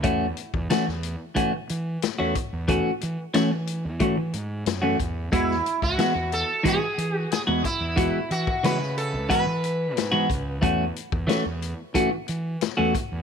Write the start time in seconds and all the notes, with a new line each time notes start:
0.03 E2 E3 A3 C#4 F#4, kick, closed hi-hat
0.37 closed hi-hat
0.54 E2, kick
0.70 E3 A3 C#4 F#4, snare, closed hi-hat
0.87 E2, muted clean electric guitar stroke, snare
1.03 closed hi-hat
1.35 E3 A3 C#4 F#4, kick, closed hi-hat
1.53 muted clean electric guitar stroke
1.69 E3, closed hi-hat
2.02 snare, closed hi-hat
2.19 E2 E3 A3 C#4 F#4
2.35 muted clean electric guitar stroke, kick, closed hi-hat
2.53 E2
2.68 E3 A3 C#4 F#4, kick, closed hi-hat
3.01 E3, closed hi-hat
3.34 E3 A3 C#4 F#4, snare, closed hi-hat
3.51 muted clean electric guitar stroke
3.67 closed hi-hat
3.85 E2
4.00 E3 A3 C#4 F#4, kick, closed hi-hat
4.17 E3, muted clean electric guitar stroke
4.33 G#2, closed hi-hat
4.66 F#2, snare, closed hi-hat
4.82 E3 A3 C#4 F#4
4.99 E2, muted clean electric guitar stroke, kick, closed hi-hat
5.32 E2 E3 G#3 B3 E4 F#4, kick, closed hi-hat
5.51 snare
5.66 closed hi-hat
5.82 C#2 F#4, kick
5.98 E3 G#3 B3 F#4, snare, closed hi-hat
6.15 E2, muted clean electric guitar stroke
6.32 A4, closed hi-hat
6.63 E3 G#3 B3 F#4, kick, closed hi-hat
6.68 G#4
6.80 muted clean electric guitar stroke
6.98 E3, closed hi-hat
7.19 F#4
7.32 G#4, snare, closed hi-hat
7.47 E2 E3 G#3 B3 F#4
7.64 E4, muted clean electric guitar stroke, kick, closed hi-hat
7.80 E2
7.96 E3 G#3 B3 F#4, kick, closed hi-hat
8.31 E3 F#4, closed hi-hat
8.47 kick
8.63 C#3 E3 G#3 B3 F#4 B4, snare, closed hi-hat
8.80 muted clean electric guitar stroke, snare
8.98 A4, closed hi-hat
9.13 C#2
9.29 E3 G#3 B3 F#4 B4, kick, closed hi-hat
9.45 E3, muted clean electric guitar stroke
9.64 closed hi-hat
9.96 G#2, snare, closed hi-hat
10.12 E3 G#3 B3 F#4
10.29 C#2, muted clean electric guitar stroke, kick, closed hi-hat
10.62 E2 E3 A3 C#4 F#4, kick, closed hi-hat
10.96 closed hi-hat
11.12 E2, kick
11.27 E3 A3 C#4 F#4, snare, closed hi-hat
11.45 E2, muted clean electric guitar stroke
11.62 closed hi-hat
11.94 E3 A3 C#4 F#4, kick, closed hi-hat
12.11 muted clean electric guitar stroke
12.28 E3, closed hi-hat
12.61 snare, closed hi-hat
12.77 E2 E3 A3 C#4 F#4
12.94 muted clean electric guitar stroke, kick, closed hi-hat
13.12 E2